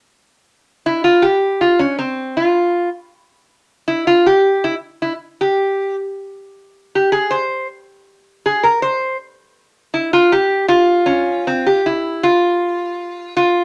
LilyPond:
\new Staff \with { instrumentName = "Resonator guitar played with a steel bar" } { \time 2/4 \key f \minor \tempo 4 = 80 r4 e'16 f'16 g'8 | f'16 des'16 c'8 f'8. r16 | r4 e'16 f'16 g'8 | e'8 e'8 g'8. r16 |
r4 g'16 aes'16 c''8 | r4 aes'16 bes'16 c''8 | r4 e'16 f'16 g'8 | f'8 des'8 c'16 g'16 e'8 |
\key f \phrygian f'4. f'8 | }